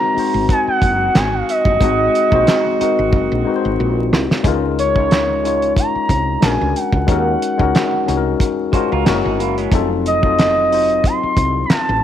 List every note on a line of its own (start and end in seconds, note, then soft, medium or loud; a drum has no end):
0.00 0.14 G#3 loud
0.00 0.15 C4 loud
0.00 0.17 D#4 loud
0.00 0.18 F#4 loud
0.00 2.83 A#4 loud
0.00 0.11 C5 medium
0.00 0.46 A#5 loud
0.14 1.28 G#3 medium
0.14 1.29 C4 medium
0.14 1.29 D#4 medium
0.14 1.30 F#4 medium
0.14 muted fretless electric bass stroke soft
0.14 open hi-hat medium
0.19 1.30 C5 medium
0.34 0.46 G#1 medium
0.49 4.08 C4 medium
0.49 4.07 D#4 medium
0.49 4.07 F#4 medium
0.49 0.67 G#5 loud
0.49 kick loud
0.49 closed hi-hat medium
0.67 1.18 F#5 loud
0.67 muted fretless electric bass stroke soft
0.82 1.08 F#1 medium
0.82 kick medium
0.82 closed hi-hat medium
1.15 1.41 G#1 medium
1.15 1.35 G#5 loud
1.15 snare loud
1.15 clap loud
1.15 closed hi-hat medium
1.34 1.48 F5 medium
1.49 3.75 D#5 medium
1.49 closed hi-hat medium
1.65 1.77 F#1 medium
1.65 kick medium
1.80 2.07 G#1 loud
1.80 2.23 G#3 medium
1.80 2.23 C4 medium
1.80 2.24 D#4 medium
1.80 2.25 F#4 medium
1.80 kick loud
1.80 closed hi-hat medium
1.84 2.25 G#4 loud
2.15 closed hi-hat medium
2.30 2.44 A#1 medium
2.30 2.72 G#3 medium
2.30 2.73 C4 medium
2.30 2.73 D#4 medium
2.30 2.74 F#4 medium
2.30 kick medium
2.35 2.75 C5 loud
2.47 snare loud
2.47 clap loud
2.47 closed hi-hat medium
2.79 3.36 G#3 medium
2.79 3.37 C4 medium
2.79 3.37 D#4 medium
2.79 3.38 F#4 medium
2.79 muted fretless electric bass stroke soft
2.79 closed hi-hat medium
2.83 3.38 A#4 medium
2.99 3.13 G#1 medium
3.13 3.27 F#1 medium
3.13 kick medium
3.32 3.43 A#1 medium
3.45 4.30 G#3 medium
3.45 4.31 C4 medium
3.45 4.32 D#4 medium
3.45 4.32 F#4 medium
3.49 3.54 B4 medium
3.56 4.36 C5 medium
3.65 3.76 G#1 medium
3.80 4.13 A#1 loud
4.13 4.26 C2 medium
4.13 snare medium
4.31 snare medium
4.43 5.72 C#2 medium
4.43 4.87 G#3 loud
4.43 4.87 C#4 medium
4.43 4.88 D#4 medium
4.43 4.88 F4 loud
4.43 kick loud
4.43 closed hi-hat medium
4.48 4.89 A#4 loud
4.79 5.73 C#5 loud
4.79 closed hi-hat medium
4.95 5.36 G#3 medium
4.95 5.37 C#4 medium
4.95 5.37 D#4 medium
4.95 5.38 F4 medium
4.95 kick medium
5.00 5.39 C#5 medium
5.11 snare loud
5.11 clap medium
5.11 closed hi-hat medium
5.43 6.40 G#3 medium
5.43 6.41 C#4 medium
5.43 6.43 D#4 medium
5.43 6.44 F4 medium
5.43 closed hi-hat medium
5.47 6.44 C#5 medium
5.62 closed hi-hat soft
5.76 6.45 A#5 loud
5.76 kick medium
5.76 closed hi-hat medium
5.95 muted fretless electric bass stroke soft
6.09 6.35 C2 medium
6.09 kick medium
6.09 closed hi-hat medium
6.41 6.57 A#1 loud
6.41 6.98 G#3 medium
6.41 6.99 C#4 medium
6.41 7.00 D4 medium
6.41 7.00 F#4 medium
6.41 6.78 G#5 medium
6.41 snare loud
6.41 clap loud
6.41 closed hi-hat medium
6.46 7.01 A#4 medium
6.61 6.73 C#2 medium
6.76 8.73 F#5 loud
6.76 closed hi-hat medium
6.92 7.05 C#2 medium
6.92 kick medium
7.06 7.34 D#2 loud
7.06 7.50 G#3 medium
7.06 7.51 C#4 medium
7.06 7.51 D#4 medium
7.06 7.52 F#4 medium
7.06 kick loud
7.06 closed hi-hat medium
7.12 7.53 A#4 loud
7.42 closed hi-hat medium
7.58 7.71 C#2 medium
7.58 7.99 G#3 medium
7.58 8.00 C#4 medium
7.58 8.01 D#4 medium
7.58 8.01 F#4 medium
7.58 kick medium
7.63 8.02 A#4 loud
7.75 snare loud
7.75 clap loud
7.75 closed hi-hat medium
8.06 8.33 C2 medium
8.06 8.63 G#3 medium
8.06 8.64 C#4 medium
8.06 8.64 D#4 medium
8.06 8.65 F#4 medium
8.06 closed hi-hat medium
8.11 8.16 G#4 medium
8.17 8.69 A#4 loud
8.40 kick medium
8.40 closed hi-hat medium
8.72 9.03 G#3 medium
8.72 9.05 C#4 medium
8.72 9.06 F4 medium
8.72 8.91 F#4 medium
8.72 9.07 F#4 medium
8.72 8.90 C5 medium
8.72 muted fretless electric bass stroke soft
8.72 kick medium
8.72 closed hi-hat medium
8.77 9.08 A#4 medium
8.92 9.03 C#2 medium
8.92 9.06 F4 medium
8.92 9.06 A#4 medium
9.05 9.21 F#1 loud
9.05 9.62 G#3 medium
9.05 9.63 C#4 medium
9.05 9.24 C#4 medium
9.05 9.63 E4 medium
9.05 9.23 F#4 medium
9.05 9.64 F#4 medium
9.05 snare loud
9.05 clap loud
9.05 closed hi-hat medium
9.10 9.65 A#4 loud
9.24 9.40 G#1 medium
9.24 9.39 D#4 medium
9.24 9.38 G#4 medium
9.39 9.66 F#1 medium
9.39 9.56 A#3 medium
9.39 9.56 E4 medium
9.39 closed hi-hat medium
9.58 9.89 G#3 medium
9.58 9.89 C#4 medium
9.58 closed hi-hat soft
9.71 11.00 F1 loud
9.71 10.14 F#3 loud
9.71 10.15 C4 loud
9.71 10.15 D#4 loud
9.71 10.16 F4 medium
9.71 kick loud
9.71 closed hi-hat medium
9.75 10.16 A4 loud
10.06 11.07 D#5 loud
10.06 closed hi-hat medium
10.22 10.63 F#3 medium
10.22 10.64 C4 medium
10.22 10.64 D#4 medium
10.22 10.65 F4 medium
10.22 kick medium
10.26 10.66 A4 medium
10.39 snare loud
10.39 clap medium
10.39 closed hi-hat medium
10.70 11.83 F#3 medium
10.70 11.84 C4 medium
10.70 11.85 D#4 medium
10.70 11.85 F4 medium
10.70 open hi-hat medium
10.74 11.86 C5 medium
10.90 closed hi-hat soft
11.04 11.64 C6 loud
11.04 kick medium
11.04 closed hi-hat medium
11.23 muted fretless electric bass stroke soft
11.37 11.63 C2 medium
11.37 kick medium
11.37 closed hi-hat medium
11.66 11.73 A#5 medium
11.70 12.04 A5 loud
11.70 muted fretless electric bass stroke soft
11.70 snare loud
11.70 clap loud
11.70 closed hi-hat medium
11.89 12.00 A1 medium